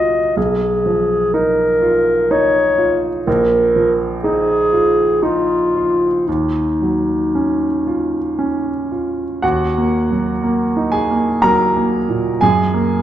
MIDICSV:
0, 0, Header, 1, 3, 480
1, 0, Start_track
1, 0, Key_signature, -6, "minor"
1, 0, Tempo, 972447
1, 182, Time_signature, 3, 2, 24, 8
1, 2579, Tempo, 1050788
1, 4499, Tempo, 990099
1, 6241, End_track
2, 0, Start_track
2, 0, Title_t, "Clarinet"
2, 0, Program_c, 0, 71
2, 0, Note_on_c, 0, 75, 52
2, 181, Note_off_c, 0, 75, 0
2, 184, Note_on_c, 0, 68, 46
2, 661, Note_on_c, 0, 70, 57
2, 668, Note_off_c, 0, 68, 0
2, 1143, Note_on_c, 0, 73, 54
2, 1150, Note_off_c, 0, 70, 0
2, 1533, Note_off_c, 0, 73, 0
2, 1617, Note_on_c, 0, 70, 47
2, 1950, Note_off_c, 0, 70, 0
2, 2092, Note_on_c, 0, 68, 58
2, 2583, Note_on_c, 0, 65, 50
2, 2590, Note_off_c, 0, 68, 0
2, 3057, Note_on_c, 0, 63, 36
2, 3064, Note_off_c, 0, 65, 0
2, 4259, Note_off_c, 0, 63, 0
2, 6241, End_track
3, 0, Start_track
3, 0, Title_t, "Grand piano"
3, 0, Program_c, 1, 0
3, 0, Control_c, 1, 64, 127
3, 0, Note_on_c, 1, 35, 33
3, 0, Note_on_c, 1, 63, 29
3, 0, Note_on_c, 1, 65, 31
3, 0, Note_on_c, 1, 66, 34
3, 85, Note_off_c, 1, 66, 0
3, 164, Note_off_c, 1, 35, 0
3, 182, Note_off_c, 1, 65, 0
3, 182, Note_on_c, 1, 35, 36
3, 189, Control_c, 1, 64, 0
3, 193, Note_off_c, 1, 63, 0
3, 260, Control_c, 1, 64, 127
3, 424, Note_on_c, 1, 53, 30
3, 661, Note_on_c, 1, 63, 36
3, 805, Note_off_c, 1, 53, 0
3, 898, Note_on_c, 1, 65, 33
3, 1043, Note_off_c, 1, 63, 0
3, 1140, Note_on_c, 1, 63, 41
3, 1280, Note_off_c, 1, 65, 0
3, 1373, Note_on_c, 1, 65, 34
3, 1519, Note_off_c, 1, 63, 0
3, 1593, Note_off_c, 1, 35, 0
3, 1612, Note_off_c, 1, 65, 0
3, 1616, Note_on_c, 1, 34, 45
3, 1620, Control_c, 1, 64, 0
3, 1690, Control_c, 1, 64, 127
3, 1856, Note_on_c, 1, 53, 31
3, 2094, Note_on_c, 1, 63, 33
3, 2237, Note_off_c, 1, 53, 0
3, 2335, Note_on_c, 1, 65, 33
3, 2481, Note_off_c, 1, 63, 0
3, 2580, Note_on_c, 1, 63, 35
3, 2719, Note_off_c, 1, 65, 0
3, 2818, Note_on_c, 1, 65, 27
3, 2959, Note_off_c, 1, 63, 0
3, 3039, Note_off_c, 1, 34, 0
3, 3059, Note_off_c, 1, 65, 0
3, 3063, Control_c, 1, 64, 0
3, 3063, Note_on_c, 1, 39, 30
3, 3147, Control_c, 1, 64, 127
3, 3308, Note_on_c, 1, 54, 21
3, 3550, Note_on_c, 1, 61, 24
3, 3688, Note_off_c, 1, 54, 0
3, 3787, Note_on_c, 1, 65, 26
3, 3926, Note_off_c, 1, 61, 0
3, 4023, Note_on_c, 1, 61, 26
3, 4166, Note_off_c, 1, 65, 0
3, 4265, Note_on_c, 1, 65, 22
3, 4406, Note_off_c, 1, 61, 0
3, 4482, Note_off_c, 1, 39, 0
3, 4497, Note_on_c, 1, 78, 54
3, 4500, Note_off_c, 1, 65, 0
3, 4501, Note_on_c, 1, 39, 39
3, 4503, Note_on_c, 1, 66, 42
3, 4506, Control_c, 1, 64, 0
3, 4593, Control_c, 1, 64, 127
3, 4667, Note_on_c, 1, 58, 29
3, 4831, Note_on_c, 1, 54, 29
3, 4921, Note_off_c, 1, 58, 0
3, 4987, Note_on_c, 1, 58, 27
3, 5082, Note_off_c, 1, 54, 0
3, 5148, Note_on_c, 1, 63, 34
3, 5205, Note_off_c, 1, 66, 0
3, 5221, Note_on_c, 1, 80, 59
3, 5222, Note_off_c, 1, 78, 0
3, 5227, Note_on_c, 1, 68, 41
3, 5241, Note_off_c, 1, 58, 0
3, 5312, Note_on_c, 1, 58, 31
3, 5403, Note_off_c, 1, 63, 0
3, 5450, Note_off_c, 1, 68, 0
3, 5463, Note_off_c, 1, 80, 0
3, 5464, Note_on_c, 1, 82, 62
3, 5470, Note_on_c, 1, 54, 35
3, 5472, Note_on_c, 1, 70, 47
3, 5566, Note_off_c, 1, 58, 0
3, 5633, Note_on_c, 1, 58, 30
3, 5725, Note_off_c, 1, 54, 0
3, 5790, Note_on_c, 1, 46, 29
3, 5884, Note_off_c, 1, 58, 0
3, 5927, Note_off_c, 1, 39, 0
3, 5929, Note_off_c, 1, 70, 0
3, 5944, Note_off_c, 1, 82, 0
3, 5944, Note_on_c, 1, 80, 61
3, 5946, Note_off_c, 1, 46, 0
3, 5951, Note_on_c, 1, 42, 42
3, 5952, Control_c, 1, 64, 0
3, 5952, Note_on_c, 1, 68, 51
3, 6038, Control_c, 1, 64, 127
3, 6104, Note_on_c, 1, 58, 36
3, 6241, Note_off_c, 1, 42, 0
3, 6241, Note_off_c, 1, 58, 0
3, 6241, Note_off_c, 1, 68, 0
3, 6241, Note_off_c, 1, 80, 0
3, 6241, End_track
0, 0, End_of_file